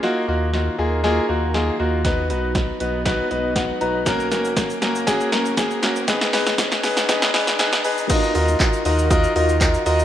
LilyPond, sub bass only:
\new Staff \with { instrumentName = "Sub bass" } { \clef bass \time 4/4 \key ees \minor \tempo 4 = 119 r8 ees,4 ees,4 ees,4 ees,8~ | ees,8 b,,4 b,,4 b,,4 b,,8~ | b,,8 ges,,4 ges,,4 ges,,4 ges,,8~ | ges,,8 aes,,4 aes,,4 aes,,4 aes,,8 |
r8 ees,8 r8 ees,4 ees,4 ees,8 | }